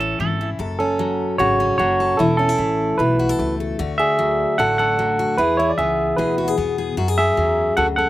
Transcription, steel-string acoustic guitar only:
Already playing: E3 E4 A4
0.01 C#4
0.20 E3
0.41 E4
0.59 F#2 A4
0.80 C#4
0.99 F#3
1.39 C#3 A4
1.60 C#4
1.79 F#3
2.00 A4
2.19 E3 E4
2.39 C#4
2.49 E4
2.58 A3
2.99 B2 A4
3.19 F#4
3.29 A4
3.39 A3
3.60 A4
3.79 D3 F#4
3.99 D4
4.19 F#3
4.59 A2 F#4
4.79 D4
4.99 F#3
5.19 F#4
5.38 E3 G#4
5.60 G#4
5.79 B3
6.18 B2 G#4
6.38 F#4
6.48 G#4
6.58 B3
6.78 G#4
6.97 F#2 F#4
7.08 G#4
7.18 C#4
7.37 F#3
7.77 C#3 F#4
7.98 C#4

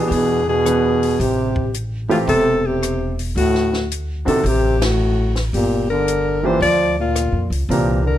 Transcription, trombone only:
0.07 B2
0.13 B2
0.47 B2
1.19 C3
2.09 A2
2.27 C3
2.65 C3
3.36 A2
4.27 C3
4.44 C3
4.82 A2
5.53 A#2
5.91 D3
6.44 E3
6.62 F3
6.99 A#2
7.70 A#2
8.04 D3

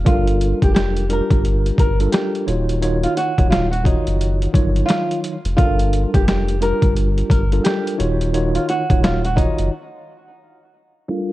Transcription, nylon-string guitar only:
0.07 F4
0.64 G4
0.75 G4
1.13 A#4
1.80 A#4
2.12 G4
3.03 F4
3.17 F#4
3.50 F4
3.71 F#4
3.85 D#4
4.86 F4
5.57 F4
6.14 G4
6.28 G4
6.63 A#4
7.30 A#4
7.64 G4
8.55 F4
8.69 F#4
9.03 F4
9.25 F#4
9.36 D#4
11.10 F4

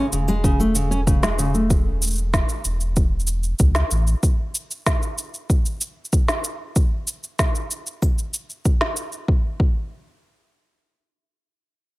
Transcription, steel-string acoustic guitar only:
0.13 C#3
0.28 G#3
0.44 C#3
0.60 A3
0.75 C#3
0.91 C#4
1.07 C#3
1.23 G#3
1.39 C#3
1.54 A3

